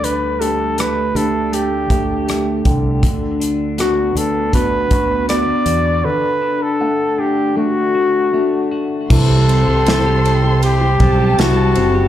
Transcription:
<<
  \new Staff \with { instrumentName = "Violin section" } { \time 4/4 \key d \mixolydian \tempo 4 = 80 r1 | r1 | r1 | <c'' c'''>2~ <c'' c'''>8 <a' a''>4. | }
  \new Staff \with { instrumentName = "Flugelhorn" } { \time 4/4 \key d \mixolydian b'8 a'8 b'8 a'8 g'4. r8 | r4 fis'8 a'8 b'4 d''4 | b'8. a'8. g'8 fis'4. r8 | a'2 g'4 fis'4 | }
  \new Staff \with { instrumentName = "Clean electric guitar" } { \time 4/4 \key d \mixolydian d8 d'8 a8 d'8 a8 g'8 a8 g'8 | d8 d'8 b8 d'8 b8 fis'8 b8 fis'8 | d8 d'8 a8 d'8 a8 fis'8 a8 fis'8 | c16 c'16 g16 g'16 c'16 g'16 c'16 g'8 c'16 g16 g'16 c'8 c'16 g'16 | }
  \new Staff \with { instrumentName = "Grand piano" } { \time 4/4 \key d \mixolydian d8 <a d' g'>4 <a d' g'>4 <a d' g'>4 d8 | r4 <b d' fis'>4 <b d' fis'>4 <b d' fis'>4 | d4 <a d' fis''>4 <a d' fis'>4 <a d' fis'>4 | e16 g16 c'16 g16 e'16 g16 c'16 g8 g16 c'16 g16 e'16 g16 c'16 g16 | }
  \new Staff \with { instrumentName = "Fingered electric bass" } { \clef bass \time 4/4 \key d \mixolydian d,4. d,4 d,4 c,8 | d,4. d,4 d,8. r16 e,8 | r1 | c,8. c,4.~ c,16 b,,8 c,8 fis,,8 | }
  \new DrumStaff \with { instrumentName = "Drums" } \drummode { \time 4/4 hh8 hh8 <hh ss>8 hh8 hh8 <hh bd>8 <hh ss>8 <hh bd>8 | <hh bd>8 hh8 <hh ss>8 hh8 <hh bd>8 <hh bd>8 <hh ss>8 hh8 | r4 r4 r4 r4 | <cymc bd>8 cymr8 <cymr sn>8 cymr8 cymr8 <bd cymr>8 <cymr sn>8 cymr8 | }
>>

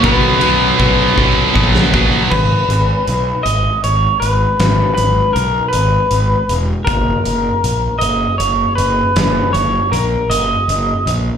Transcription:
<<
  \new Staff \with { instrumentName = "Clean electric guitar" } { \time 6/8 \key gis \minor \tempo 4. = 53 b'2~ b'8 r8 | b'4. dis''8 cis''8 b'8~ | b'8 b'8 ais'8 b'4 r8 | ais'4. dis''8 cis''8 b'8~ |
b'8 cis''8 ais'8 dis''4 r8 | }
  \new Staff \with { instrumentName = "Overdriven electric guitar" } { \clef bass \time 6/8 \key gis \minor <b, fis b cis'>8 <b, fis b cis'>8 <b, fis b cis'>8 <b, fis b cis'>8 <b, fis b cis'>8 <b, fis b cis'>8 | r2. | r2. | r2. |
r2. | }
  \new Staff \with { instrumentName = "Distorted electric guitar" } { \clef bass \time 6/8 \key gis \minor <b, fis b>8 <b, fis b>8 <b, fis b>8 <b, fis b>8 <b, fis b>8 <b, fis b>8 | r2. | r2. | r2. |
r2. | }
  \new Staff \with { instrumentName = "Distorted electric guitar" } { \clef bass \time 6/8 \key gis \minor <b, fis b>8 <b, fis b>8 <b, fis b>8 <b, fis b>8 <b, fis b>8 <b, fis b>8 | r2. | r2. | r2. |
r2. | }
  \new Staff \with { instrumentName = "Fingered electric bass" } { \clef bass \time 6/8 \key gis \minor b,,8 b,,8 b,,8 b,,8 ais,,4 | gis,,8 gis,,8 b,,8 gis,,8 gis,,8 gis,,8 | gis,,8 gis,,8 b,,8 gis,,8 gis,,8 e,,8 | fis,,8 fis,,8 ais,,8 fis,,8 fis,,8 fis,,8 |
fis,,8 fis,,8 ais,,8 fis,,8 fis,,8 ais,,8 | }
  \new DrumStaff \with { instrumentName = "Drums" } \drummode { \time 6/8 <bd cymr>8 cymr8 <bd cymr>8 bd8 bd16 sn16 bd8 | <cymc bd>8 hh8 hh8 hh8 hh8 hh8 | <hh sn>8 hh8 hh8 hh8 hh8 hh8 | <hh bd>8 hh8 hh8 hh8 hh8 hh8 |
<hh sn>8 hh8 hh8 hh8 hh8 hh8 | }
>>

